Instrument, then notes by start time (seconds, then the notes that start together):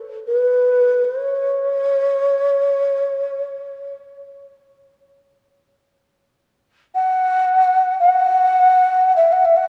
alto flute
0.27 B4
1.04 C#5
6.95 F#5
7.99 F#5
9.16 E5
9.32 F#5
9.45 E5
9.56 F#5